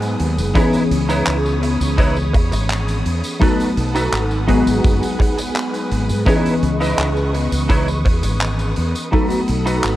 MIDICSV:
0, 0, Header, 1, 7, 480
1, 0, Start_track
1, 0, Key_signature, 4, "minor"
1, 0, Tempo, 714286
1, 374, Time_signature, 4, 2, 24, 8
1, 6695, End_track
2, 0, Start_track
2, 0, Title_t, "String section"
2, 0, Program_c, 0, 48
2, 0, Note_on_c, 0, 71, 81
2, 0, Note_on_c, 0, 78, 72
2, 0, Note_on_c, 0, 80, 77
2, 0, Note_on_c, 0, 87, 90
2, 345, Note_off_c, 0, 71, 0
2, 361, Note_off_c, 0, 78, 0
2, 361, Note_off_c, 0, 80, 0
2, 373, Note_on_c, 0, 73, 86
2, 373, Note_on_c, 0, 83, 74
2, 2274, Note_off_c, 0, 73, 0
2, 2274, Note_off_c, 0, 83, 0
2, 2291, Note_on_c, 0, 71, 84
2, 2292, Note_on_c, 0, 78, 77
2, 2293, Note_on_c, 0, 81, 74
2, 3006, Note_off_c, 0, 81, 0
2, 3017, Note_on_c, 0, 80, 73
2, 4188, Note_off_c, 0, 87, 0
2, 4194, Note_off_c, 0, 78, 0
2, 4204, Note_off_c, 0, 80, 0
2, 4213, Note_on_c, 0, 85, 78
2, 4214, Note_on_c, 0, 87, 88
2, 6106, Note_off_c, 0, 71, 0
2, 6114, Note_off_c, 0, 85, 0
2, 6133, Note_on_c, 0, 83, 72
2, 6134, Note_on_c, 0, 78, 79
2, 6135, Note_on_c, 0, 69, 80
2, 6695, Note_off_c, 0, 69, 0
2, 6695, Note_off_c, 0, 78, 0
2, 6695, Note_off_c, 0, 83, 0
2, 6695, Note_off_c, 0, 87, 0
2, 6695, End_track
3, 0, Start_track
3, 0, Title_t, "Clean electric guitar"
3, 0, Program_c, 1, 27
3, 369, Note_on_c, 1, 63, 111
3, 374, Note_on_c, 1, 64, 89
3, 374, Note_on_c, 1, 71, 99
3, 379, Note_on_c, 1, 73, 118
3, 552, Note_off_c, 1, 63, 0
3, 554, Note_off_c, 1, 64, 0
3, 555, Note_off_c, 1, 71, 0
3, 557, Note_off_c, 1, 73, 0
3, 731, Note_on_c, 1, 63, 84
3, 735, Note_on_c, 1, 64, 80
3, 738, Note_on_c, 1, 71, 78
3, 742, Note_on_c, 1, 73, 98
3, 913, Note_off_c, 1, 63, 0
3, 915, Note_off_c, 1, 64, 0
3, 916, Note_off_c, 1, 71, 0
3, 918, Note_off_c, 1, 73, 0
3, 1329, Note_on_c, 1, 63, 86
3, 1333, Note_on_c, 1, 64, 85
3, 1337, Note_on_c, 1, 71, 82
3, 1340, Note_on_c, 1, 73, 103
3, 1453, Note_off_c, 1, 63, 0
3, 1455, Note_off_c, 1, 64, 0
3, 1457, Note_off_c, 1, 71, 0
3, 1459, Note_off_c, 1, 73, 0
3, 2290, Note_on_c, 1, 63, 96
3, 2295, Note_on_c, 1, 66, 92
3, 2297, Note_on_c, 1, 69, 105
3, 2300, Note_on_c, 1, 71, 121
3, 2473, Note_off_c, 1, 63, 0
3, 2474, Note_off_c, 1, 66, 0
3, 2476, Note_off_c, 1, 69, 0
3, 2478, Note_off_c, 1, 71, 0
3, 2653, Note_on_c, 1, 63, 84
3, 2656, Note_on_c, 1, 66, 82
3, 2659, Note_on_c, 1, 69, 82
3, 2663, Note_on_c, 1, 71, 93
3, 2833, Note_off_c, 1, 63, 0
3, 2835, Note_off_c, 1, 66, 0
3, 2837, Note_off_c, 1, 69, 0
3, 2838, Note_off_c, 1, 71, 0
3, 3008, Note_on_c, 1, 63, 90
3, 3011, Note_on_c, 1, 66, 82
3, 3017, Note_on_c, 1, 68, 75
3, 3018, Note_on_c, 1, 71, 100
3, 3396, Note_off_c, 1, 63, 0
3, 3399, Note_off_c, 1, 66, 0
3, 3400, Note_off_c, 1, 68, 0
3, 3401, Note_off_c, 1, 71, 0
3, 4208, Note_on_c, 1, 63, 108
3, 4211, Note_on_c, 1, 64, 104
3, 4215, Note_on_c, 1, 71, 103
3, 4219, Note_on_c, 1, 73, 125
3, 4392, Note_off_c, 1, 63, 0
3, 4394, Note_off_c, 1, 64, 0
3, 4395, Note_off_c, 1, 71, 0
3, 4397, Note_off_c, 1, 73, 0
3, 4571, Note_on_c, 1, 63, 85
3, 4574, Note_on_c, 1, 64, 80
3, 4578, Note_on_c, 1, 71, 78
3, 4581, Note_on_c, 1, 75, 99
3, 4753, Note_off_c, 1, 63, 0
3, 4754, Note_off_c, 1, 64, 0
3, 4756, Note_off_c, 1, 71, 0
3, 4758, Note_off_c, 1, 75, 0
3, 5169, Note_on_c, 1, 63, 94
3, 5172, Note_on_c, 1, 64, 86
3, 5176, Note_on_c, 1, 71, 86
3, 5178, Note_on_c, 1, 73, 99
3, 5293, Note_off_c, 1, 63, 0
3, 5294, Note_off_c, 1, 64, 0
3, 5297, Note_off_c, 1, 71, 0
3, 5298, Note_off_c, 1, 73, 0
3, 6128, Note_on_c, 1, 63, 109
3, 6132, Note_on_c, 1, 66, 102
3, 6135, Note_on_c, 1, 69, 94
3, 6139, Note_on_c, 1, 71, 108
3, 6312, Note_off_c, 1, 63, 0
3, 6314, Note_off_c, 1, 66, 0
3, 6316, Note_off_c, 1, 69, 0
3, 6317, Note_off_c, 1, 71, 0
3, 6489, Note_on_c, 1, 63, 85
3, 6492, Note_on_c, 1, 66, 82
3, 6499, Note_on_c, 1, 69, 64
3, 6499, Note_on_c, 1, 71, 91
3, 6672, Note_off_c, 1, 63, 0
3, 6674, Note_off_c, 1, 66, 0
3, 6675, Note_off_c, 1, 69, 0
3, 6677, Note_off_c, 1, 71, 0
3, 6695, End_track
4, 0, Start_track
4, 0, Title_t, "FM electric piano"
4, 0, Program_c, 2, 5
4, 0, Control_c, 2, 64, 127
4, 0, Note_on_c, 2, 54, 95
4, 0, Note_on_c, 2, 56, 87
4, 0, Note_on_c, 2, 59, 90
4, 0, Note_on_c, 2, 63, 83
4, 0, Note_on_c, 2, 68, 98
4, 321, Note_off_c, 2, 54, 0
4, 324, Note_off_c, 2, 56, 0
4, 327, Note_off_c, 2, 59, 0
4, 329, Note_off_c, 2, 63, 0
4, 332, Note_off_c, 2, 68, 0
4, 361, Note_on_c, 2, 52, 91
4, 366, Note_on_c, 2, 59, 89
4, 373, Note_on_c, 2, 61, 84
4, 382, Note_on_c, 2, 68, 103
4, 384, Control_c, 2, 64, 0
4, 489, Control_c, 2, 64, 127
4, 2240, Note_off_c, 2, 52, 0
4, 2243, Note_off_c, 2, 59, 0
4, 2246, Note_off_c, 2, 61, 0
4, 2251, Note_off_c, 2, 68, 0
4, 2282, Note_on_c, 2, 54, 80
4, 2287, Note_on_c, 2, 57, 73
4, 2294, Note_on_c, 2, 59, 71
4, 2297, Note_on_c, 2, 63, 72
4, 2302, Control_c, 2, 64, 0
4, 2303, Note_on_c, 2, 69, 86
4, 2433, Control_c, 2, 64, 127
4, 2961, Note_off_c, 2, 54, 0
4, 2963, Note_off_c, 2, 57, 0
4, 2966, Note_off_c, 2, 59, 0
4, 2968, Note_off_c, 2, 63, 0
4, 2971, Note_off_c, 2, 69, 0
4, 3004, Note_on_c, 2, 54, 89
4, 3009, Note_on_c, 2, 56, 85
4, 3013, Note_on_c, 2, 59, 88
4, 3018, Note_on_c, 2, 63, 81
4, 3023, Control_c, 2, 64, 0
4, 3024, Note_on_c, 2, 68, 102
4, 3131, Control_c, 2, 64, 127
4, 4162, Note_off_c, 2, 54, 0
4, 4164, Note_off_c, 2, 56, 0
4, 4166, Note_off_c, 2, 59, 0
4, 4169, Note_off_c, 2, 63, 0
4, 4172, Note_off_c, 2, 68, 0
4, 4203, Note_on_c, 2, 52, 92
4, 4209, Note_on_c, 2, 59, 81
4, 4213, Note_on_c, 2, 61, 81
4, 4218, Note_on_c, 2, 75, 84
4, 4223, Note_on_c, 2, 68, 99
4, 4224, Control_c, 2, 64, 0
4, 4325, Control_c, 2, 64, 127
4, 6081, Note_off_c, 2, 52, 0
4, 6084, Note_off_c, 2, 59, 0
4, 6086, Note_off_c, 2, 61, 0
4, 6089, Note_off_c, 2, 75, 0
4, 6091, Note_off_c, 2, 68, 0
4, 6123, Note_on_c, 2, 54, 78
4, 6128, Note_on_c, 2, 57, 71
4, 6133, Note_on_c, 2, 59, 72
4, 6138, Note_on_c, 2, 63, 71
4, 6143, Control_c, 2, 64, 0
4, 6143, Note_on_c, 2, 69, 90
4, 6251, Control_c, 2, 64, 127
4, 6695, Note_off_c, 2, 54, 0
4, 6695, Note_off_c, 2, 57, 0
4, 6695, Note_off_c, 2, 59, 0
4, 6695, Note_off_c, 2, 63, 0
4, 6695, Note_off_c, 2, 69, 0
4, 6695, End_track
5, 0, Start_track
5, 0, Title_t, "Fretless electric bass"
5, 0, Program_c, 3, 35
5, 0, Note_on_c, 3, 44, 98
5, 98, Note_off_c, 3, 44, 0
5, 134, Note_on_c, 3, 39, 98
5, 256, Note_on_c, 3, 30, 99
5, 266, Note_off_c, 3, 39, 0
5, 356, Note_off_c, 3, 30, 0
5, 611, Note_on_c, 3, 37, 98
5, 817, Note_off_c, 3, 37, 0
5, 853, Note_on_c, 3, 37, 88
5, 1186, Note_off_c, 3, 37, 0
5, 1215, Note_on_c, 3, 37, 102
5, 1577, Note_off_c, 3, 37, 0
5, 1577, Note_on_c, 3, 40, 92
5, 1679, Note_off_c, 3, 40, 0
5, 1696, Note_on_c, 3, 32, 105
5, 2026, Note_off_c, 3, 32, 0
5, 2056, Note_on_c, 3, 40, 92
5, 2158, Note_off_c, 3, 40, 0
5, 2535, Note_on_c, 3, 35, 102
5, 2739, Note_off_c, 3, 35, 0
5, 2773, Note_on_c, 3, 32, 84
5, 3106, Note_off_c, 3, 32, 0
5, 3135, Note_on_c, 3, 32, 99
5, 3236, Note_off_c, 3, 32, 0
5, 3255, Note_on_c, 3, 30, 99
5, 3358, Note_off_c, 3, 30, 0
5, 3976, Note_on_c, 3, 32, 94
5, 4096, Note_on_c, 3, 44, 90
5, 4106, Note_off_c, 3, 32, 0
5, 4196, Note_off_c, 3, 44, 0
5, 4452, Note_on_c, 3, 37, 102
5, 4657, Note_off_c, 3, 37, 0
5, 4690, Note_on_c, 3, 37, 86
5, 5024, Note_off_c, 3, 37, 0
5, 5054, Note_on_c, 3, 37, 99
5, 5415, Note_off_c, 3, 37, 0
5, 5415, Note_on_c, 3, 40, 96
5, 5518, Note_off_c, 3, 40, 0
5, 5536, Note_on_c, 3, 32, 102
5, 5865, Note_off_c, 3, 32, 0
5, 5897, Note_on_c, 3, 40, 86
5, 5999, Note_off_c, 3, 40, 0
5, 6378, Note_on_c, 3, 35, 99
5, 6580, Note_off_c, 3, 35, 0
5, 6614, Note_on_c, 3, 32, 89
5, 6695, Note_off_c, 3, 32, 0
5, 6695, End_track
6, 0, Start_track
6, 0, Title_t, "Muted clean electric guitar strokes"
6, 1088, Note_on_c, 9, 29, 32
6, 1155, Note_off_c, 9, 29, 0
6, 1569, Note_on_c, 9, 29, 84
6, 1636, Note_off_c, 9, 29, 0
6, 1691, Note_on_c, 9, 29, 33
6, 1758, Note_off_c, 9, 29, 0
6, 3488, Note_on_c, 9, 29, 87
6, 3556, Note_off_c, 9, 29, 0
6, 3613, Note_on_c, 9, 29, 32
6, 3680, Note_off_c, 9, 29, 0
6, 4928, Note_on_c, 9, 29, 31
6, 4996, Note_off_c, 9, 29, 0
6, 5411, Note_on_c, 9, 29, 89
6, 5478, Note_off_c, 9, 29, 0
6, 5531, Note_on_c, 9, 29, 33
6, 5599, Note_off_c, 9, 29, 0
6, 6695, End_track
7, 0, Start_track
7, 0, Title_t, "Drums"
7, 12, Note_on_c, 9, 42, 54
7, 19, Note_on_c, 9, 54, 28
7, 79, Note_off_c, 9, 42, 0
7, 86, Note_off_c, 9, 54, 0
7, 131, Note_on_c, 9, 42, 88
7, 199, Note_off_c, 9, 42, 0
7, 258, Note_on_c, 9, 54, 47
7, 259, Note_on_c, 9, 42, 60
7, 325, Note_off_c, 9, 54, 0
7, 326, Note_off_c, 9, 42, 0
7, 372, Note_on_c, 9, 36, 116
7, 374, Note_on_c, 9, 54, 44
7, 377, Note_on_c, 9, 42, 84
7, 439, Note_off_c, 9, 36, 0
7, 441, Note_off_c, 9, 54, 0
7, 444, Note_off_c, 9, 42, 0
7, 491, Note_on_c, 9, 42, 55
7, 498, Note_on_c, 9, 54, 27
7, 558, Note_off_c, 9, 42, 0
7, 565, Note_off_c, 9, 54, 0
7, 614, Note_on_c, 9, 42, 90
7, 681, Note_off_c, 9, 42, 0
7, 735, Note_on_c, 9, 42, 71
7, 737, Note_on_c, 9, 54, 57
7, 802, Note_off_c, 9, 42, 0
7, 804, Note_off_c, 9, 54, 0
7, 852, Note_on_c, 9, 39, 124
7, 855, Note_on_c, 9, 54, 47
7, 858, Note_on_c, 9, 42, 96
7, 919, Note_off_c, 9, 39, 0
7, 922, Note_off_c, 9, 54, 0
7, 925, Note_off_c, 9, 42, 0
7, 980, Note_on_c, 9, 54, 28
7, 1047, Note_off_c, 9, 54, 0
7, 1096, Note_on_c, 9, 42, 98
7, 1163, Note_off_c, 9, 42, 0
7, 1218, Note_on_c, 9, 54, 52
7, 1220, Note_on_c, 9, 42, 71
7, 1285, Note_off_c, 9, 54, 0
7, 1287, Note_off_c, 9, 42, 0
7, 1333, Note_on_c, 9, 36, 117
7, 1336, Note_on_c, 9, 54, 39
7, 1337, Note_on_c, 9, 42, 97
7, 1400, Note_off_c, 9, 36, 0
7, 1404, Note_off_c, 9, 42, 0
7, 1404, Note_off_c, 9, 54, 0
7, 1455, Note_on_c, 9, 54, 27
7, 1522, Note_off_c, 9, 54, 0
7, 1576, Note_on_c, 9, 36, 117
7, 1576, Note_on_c, 9, 42, 86
7, 1643, Note_off_c, 9, 36, 0
7, 1643, Note_off_c, 9, 42, 0
7, 1694, Note_on_c, 9, 42, 72
7, 1701, Note_on_c, 9, 54, 56
7, 1761, Note_off_c, 9, 42, 0
7, 1769, Note_off_c, 9, 54, 0
7, 1815, Note_on_c, 9, 42, 88
7, 1816, Note_on_c, 9, 39, 127
7, 1816, Note_on_c, 9, 54, 42
7, 1883, Note_off_c, 9, 39, 0
7, 1883, Note_off_c, 9, 42, 0
7, 1883, Note_off_c, 9, 54, 0
7, 1936, Note_on_c, 9, 42, 53
7, 1938, Note_on_c, 9, 54, 29
7, 2003, Note_off_c, 9, 42, 0
7, 2006, Note_off_c, 9, 54, 0
7, 2055, Note_on_c, 9, 42, 86
7, 2123, Note_off_c, 9, 42, 0
7, 2176, Note_on_c, 9, 42, 70
7, 2178, Note_on_c, 9, 54, 51
7, 2243, Note_off_c, 9, 42, 0
7, 2245, Note_off_c, 9, 54, 0
7, 2296, Note_on_c, 9, 36, 127
7, 2301, Note_on_c, 9, 42, 84
7, 2302, Note_on_c, 9, 54, 45
7, 2363, Note_off_c, 9, 36, 0
7, 2368, Note_off_c, 9, 42, 0
7, 2369, Note_off_c, 9, 54, 0
7, 2419, Note_on_c, 9, 42, 57
7, 2421, Note_on_c, 9, 54, 25
7, 2486, Note_off_c, 9, 42, 0
7, 2489, Note_off_c, 9, 54, 0
7, 2535, Note_on_c, 9, 42, 84
7, 2603, Note_off_c, 9, 42, 0
7, 2658, Note_on_c, 9, 54, 51
7, 2659, Note_on_c, 9, 42, 70
7, 2726, Note_off_c, 9, 42, 0
7, 2726, Note_off_c, 9, 54, 0
7, 2777, Note_on_c, 9, 42, 92
7, 2777, Note_on_c, 9, 54, 41
7, 2778, Note_on_c, 9, 39, 123
7, 2844, Note_off_c, 9, 42, 0
7, 2844, Note_off_c, 9, 54, 0
7, 2845, Note_off_c, 9, 39, 0
7, 2896, Note_on_c, 9, 54, 24
7, 2963, Note_off_c, 9, 54, 0
7, 3014, Note_on_c, 9, 42, 89
7, 3017, Note_on_c, 9, 36, 69
7, 3081, Note_off_c, 9, 42, 0
7, 3084, Note_off_c, 9, 36, 0
7, 3139, Note_on_c, 9, 42, 75
7, 3139, Note_on_c, 9, 54, 57
7, 3206, Note_off_c, 9, 42, 0
7, 3206, Note_off_c, 9, 54, 0
7, 3256, Note_on_c, 9, 36, 127
7, 3256, Note_on_c, 9, 54, 40
7, 3257, Note_on_c, 9, 42, 78
7, 3323, Note_off_c, 9, 36, 0
7, 3323, Note_off_c, 9, 54, 0
7, 3325, Note_off_c, 9, 42, 0
7, 3379, Note_on_c, 9, 42, 56
7, 3380, Note_on_c, 9, 54, 29
7, 3446, Note_off_c, 9, 42, 0
7, 3447, Note_off_c, 9, 54, 0
7, 3493, Note_on_c, 9, 36, 103
7, 3505, Note_on_c, 9, 42, 91
7, 3560, Note_off_c, 9, 36, 0
7, 3572, Note_off_c, 9, 42, 0
7, 3617, Note_on_c, 9, 42, 73
7, 3619, Note_on_c, 9, 54, 60
7, 3684, Note_off_c, 9, 42, 0
7, 3686, Note_off_c, 9, 54, 0
7, 3734, Note_on_c, 9, 42, 97
7, 3735, Note_on_c, 9, 54, 49
7, 3736, Note_on_c, 9, 39, 122
7, 3801, Note_off_c, 9, 42, 0
7, 3802, Note_off_c, 9, 54, 0
7, 3804, Note_off_c, 9, 39, 0
7, 3857, Note_on_c, 9, 42, 57
7, 3865, Note_on_c, 9, 54, 28
7, 3925, Note_off_c, 9, 42, 0
7, 3932, Note_off_c, 9, 54, 0
7, 3976, Note_on_c, 9, 42, 87
7, 4043, Note_off_c, 9, 42, 0
7, 4095, Note_on_c, 9, 54, 51
7, 4097, Note_on_c, 9, 42, 60
7, 4163, Note_off_c, 9, 54, 0
7, 4164, Note_off_c, 9, 42, 0
7, 4210, Note_on_c, 9, 36, 121
7, 4217, Note_on_c, 9, 54, 42
7, 4219, Note_on_c, 9, 42, 90
7, 4277, Note_off_c, 9, 36, 0
7, 4284, Note_off_c, 9, 54, 0
7, 4286, Note_off_c, 9, 42, 0
7, 4339, Note_on_c, 9, 42, 57
7, 4341, Note_on_c, 9, 54, 26
7, 4406, Note_off_c, 9, 42, 0
7, 4408, Note_off_c, 9, 54, 0
7, 4454, Note_on_c, 9, 42, 75
7, 4521, Note_off_c, 9, 42, 0
7, 4573, Note_on_c, 9, 42, 66
7, 4579, Note_on_c, 9, 54, 55
7, 4640, Note_off_c, 9, 42, 0
7, 4647, Note_off_c, 9, 54, 0
7, 4692, Note_on_c, 9, 42, 88
7, 4692, Note_on_c, 9, 54, 42
7, 4698, Note_on_c, 9, 39, 121
7, 4760, Note_off_c, 9, 42, 0
7, 4760, Note_off_c, 9, 54, 0
7, 4765, Note_off_c, 9, 39, 0
7, 4817, Note_on_c, 9, 54, 27
7, 4884, Note_off_c, 9, 54, 0
7, 4937, Note_on_c, 9, 42, 82
7, 5004, Note_off_c, 9, 42, 0
7, 5056, Note_on_c, 9, 42, 67
7, 5056, Note_on_c, 9, 54, 50
7, 5123, Note_off_c, 9, 42, 0
7, 5123, Note_off_c, 9, 54, 0
7, 5173, Note_on_c, 9, 36, 117
7, 5174, Note_on_c, 9, 42, 87
7, 5174, Note_on_c, 9, 54, 42
7, 5240, Note_off_c, 9, 36, 0
7, 5241, Note_off_c, 9, 42, 0
7, 5241, Note_off_c, 9, 54, 0
7, 5297, Note_on_c, 9, 54, 29
7, 5364, Note_off_c, 9, 54, 0
7, 5415, Note_on_c, 9, 36, 112
7, 5419, Note_on_c, 9, 42, 79
7, 5482, Note_off_c, 9, 36, 0
7, 5486, Note_off_c, 9, 42, 0
7, 5531, Note_on_c, 9, 42, 68
7, 5532, Note_on_c, 9, 54, 58
7, 5598, Note_off_c, 9, 42, 0
7, 5600, Note_off_c, 9, 54, 0
7, 5652, Note_on_c, 9, 42, 80
7, 5652, Note_on_c, 9, 54, 50
7, 5653, Note_on_c, 9, 39, 117
7, 5719, Note_off_c, 9, 54, 0
7, 5720, Note_off_c, 9, 39, 0
7, 5720, Note_off_c, 9, 42, 0
7, 5772, Note_on_c, 9, 42, 50
7, 5775, Note_on_c, 9, 54, 25
7, 5839, Note_off_c, 9, 42, 0
7, 5842, Note_off_c, 9, 54, 0
7, 5887, Note_on_c, 9, 42, 85
7, 5955, Note_off_c, 9, 42, 0
7, 6015, Note_on_c, 9, 42, 63
7, 6018, Note_on_c, 9, 54, 54
7, 6082, Note_off_c, 9, 42, 0
7, 6085, Note_off_c, 9, 54, 0
7, 6132, Note_on_c, 9, 42, 79
7, 6135, Note_on_c, 9, 36, 119
7, 6136, Note_on_c, 9, 54, 45
7, 6200, Note_off_c, 9, 42, 0
7, 6202, Note_off_c, 9, 36, 0
7, 6203, Note_off_c, 9, 54, 0
7, 6249, Note_on_c, 9, 42, 60
7, 6259, Note_on_c, 9, 54, 26
7, 6316, Note_off_c, 9, 42, 0
7, 6326, Note_off_c, 9, 54, 0
7, 6368, Note_on_c, 9, 42, 83
7, 6436, Note_off_c, 9, 42, 0
7, 6496, Note_on_c, 9, 54, 53
7, 6497, Note_on_c, 9, 42, 68
7, 6563, Note_off_c, 9, 54, 0
7, 6564, Note_off_c, 9, 42, 0
7, 6609, Note_on_c, 9, 42, 82
7, 6611, Note_on_c, 9, 39, 122
7, 6614, Note_on_c, 9, 54, 47
7, 6676, Note_off_c, 9, 42, 0
7, 6678, Note_off_c, 9, 39, 0
7, 6681, Note_off_c, 9, 54, 0
7, 6695, End_track
0, 0, End_of_file